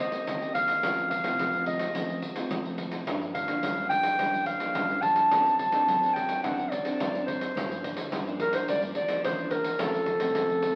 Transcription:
Already playing: D#3
0.00 D#5
0.11 A#3 C4 G4, pandeiro
0.26 D#2 D#3, pandeiro
0.40 A#3 C4 G4, pandeiro
0.54 F5, pandeiro
0.68 pandeiro
0.83 F2 F3 A3 C4 F4, pandeiro
0.98 pandeiro
1.10 F5, pandeiro
1.23 C2 A3 C4 F4, pandeiro
1.38 F2 C3, pandeiro
1.53 A3 C4 F4, pandeiro
1.66 D#5, pandeiro
1.79 A3 C4 F4, pandeiro
1.94 F2 F3 A3 C4 F4, pandeiro
2.10 pandeiro
2.22 pandeiro
2.36 A3 C4 F4, pandeiro
2.51 F2 C3, pandeiro
2.65 A3 C4 F4, pandeiro
2.78 pandeiro
2.92 pandeiro
3.07 G2 F3 A#3 D4, pandeiro
3.22 pandeiro
3.34 F5, pandeiro
3.47 D2 F3 A#3 D4, pandeiro
3.63 G2 D3, pandeiro
3.77 F3 A#3 D4, pandeiro
3.89 G5, pandeiro
4.03 pandeiro
4.19 G2 F3 A#3 D4, pandeiro
4.34 pandeiro
4.46 F5, pandeiro
4.60 F3 A#3 D4, pandeiro
4.75 G2 D3, pandeiro
4.90 F3 A#3 D4, pandeiro
5.02 A5, pandeiro
5.16 pandeiro
5.30 F#2 F#3 C4 D4 A4, pandeiro
5.46 pandeiro
5.58 A5, pandeiro
5.72 A1 C4 D4 A4, pandeiro
5.87 F#2 F#3, pandeiro
6.01 C4 D4 A4, pandeiro
6.14 G5, pandeiro
6.29 pandeiro
6.43 F#2 F#3 C4 D4 A4 F#5, pandeiro
6.59 pandeiro
6.70 D5, pandeiro
6.84 C4 D4 A4, pandeiro
7.00 F#2 F#3, pandeiro
7.14 C4 D4 A4, pandeiro
7.26 C5, pandeiro
7.41 pandeiro
7.56 G2 F3 A#3 D4, pandeiro
7.72 pandeiro
7.83 F3 A#3 D4, pandeiro
7.97 D2, pandeiro
8.12 G2 D3, pandeiro
8.27 F3 A#3 D4, pandeiro
8.40 A#4, pandeiro
8.53 C5, pandeiro
8.68 G2 D5, pandeiro
8.82 F3 A#3 D4, pandeiro
8.95 D5, pandeiro
9.08 F3 A#3 D4, pandeiro
9.24 E2 D3 C5, pandeiro
9.39 pandeiro
9.51 F3 A#3 D4 A#4, pandeiro
9.64 pandeiro
9.79 F2 F3 A3 C4 A4, pandeiro
9.94 pandeiro
10.06 pandeiro
10.20 C2 F3 A3 C4, pandeiro
10.35 F2 C3, pandeiro
10.50 pandeiro
10.62 F3 A3 C4, pandeiro

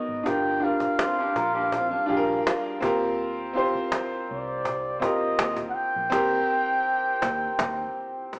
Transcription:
Already playing: B3 D#4 F#4 A#4 D#5
0.07 G#1, cajon slap
0.23 G1 D4 F4 G4 A#4, cajon bass
0.27 G5
0.45 cajon slap
0.60 D4 F4 G4, cajon slap
0.64 A#4 F5
0.80 muted fingered electric bass stroke, cajon bass
0.99 C4 F4, cajon slap
1.18 D4 G4, cajon slap
1.36 A#1 F4 A#4, cajon bass
1.54 D4 G4, cajon slap
1.72 C4 F4, cajon bass
1.91 G3 D4, cajon slap
2.06 A#1 D4 F4 G4 G#4
2.11 cajon slap
2.17 A#4
2.47 cajon slap
2.64 cajon slap
2.81 D#2 C4 F4 G4, cajon bass
2.85 A#4
3.00 cajon slap
3.18 cajon slap
3.37 cajon slap
3.53 C4 F4 G4 C5, cajon slap
3.73 muted fingered electric bass stroke, cajon slap
3.92 cajon slap
4.11 cajon slap
4.28 C2 D5, cajon slap
4.47 cajon slap
4.65 cajon bass
4.84 cajon slap
5.00 D#2 C4 F4 G4 A#4 D#5, cajon bass
5.19 cajon slap
5.39 D#2, cajon slap
5.57 cajon bass
5.70 F#5
5.74 G5, cajon slap
5.92 A#1, cajon slap
6.10 D#2 C4 G4 A#4, cajon bass, cajon slap
7.22 D#2, cajon bass, cajon slap
7.59 D#2, cajon bass, cajon slap
8.33 cajon slap

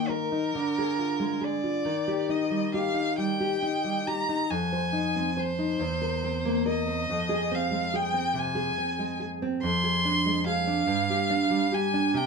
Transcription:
Already playing: D#3 A#3 G5
0.09 A#4
0.32 D#4
0.55 D3
0.78 G#4
0.99 F4
1.20 G#3
1.41 G#4 D5
1.64 F4
1.85 D#3
2.08 G4
2.29 D#4 D#5
2.50 G3
2.74 G4 F5
2.94 D#4
3.18 G3 G5
3.40 G4
3.62 D#4
3.84 G3
4.08 G4 A#5
4.29 D#4
4.50 F2 G#5
4.73 C5
4.93 D#4
5.16 C4
5.37 C5
5.59 D#4
5.80 E2
6.02 A#4
6.23 C4
6.45 A#3
6.66 A#4 D#5
6.87 C4
7.10 F2
7.29 G#4
7.51 C4 F5
7.71 G#3
7.94 G#4 G5
8.14 C4
8.34 C3
8.39 G#5
8.55 G#4
8.78 C4
8.99 G#3
9.20 G#4
9.42 C4
9.63 F2 C6
9.84 G#4
10.05 D4
10.26 G#3
10.46 G#4 F5
10.67 D4
10.87 G2
11.10 G4
11.30 D4
11.50 G3
11.72 G4 G#5
11.94 D4
12.14 C3 G5

